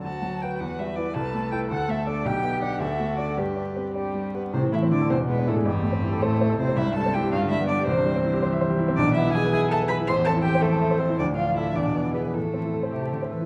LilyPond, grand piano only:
\new Staff \with { instrumentName = "Grand piano" } { \time 6/8 \key g \major \tempo 4. = 108 d,8 fis8 <fis' b'>8 e,8 g8 <e' b'>8 | c,8 a8 <e' a'>8 d,8 a8 <d' a'>8 | b,,8 b8 <d' g'>8 d,8 a8 <d' fis'>8 | g,8 d'8 c'8 d'8 g8 g'8 |
\key a \minor a,16 e16 a16 c'16 e'16 a'16 e,16 b,16 gis16 d'16 e'16 gis'16 | a,,16 e,16 a16 c'16 e'16 a'16 c''16 e''16 c''16 a'16 e'16 c'16 | c,16 g,16 g16 c'16 e'16 g'16 g,16 d16 g16 b16 d'16 g'16 | c,16 g,16 g16 c'16 e'16 g'16 c''16 e''16 c''16 g'16 e'16 c'16 |
b,,16 b,16 b16 e'16 gis'16 b'16 e''16 gis''16 e''16 b'16 gis'16 e'16 | a,,16 e,16 c'16 e'16 a'16 c''16 e''16 a''16 e''16 c''16 a'16 e'16 | d,16 a,16 d'16 f'16 a'16 d''16 e,16 b,16 b16 e'16 gis'16 b'16 | a,16 e16 c'16 e'16 a'16 c''16 e''16 a''16 e''16 c''16 a'16 e'16 | }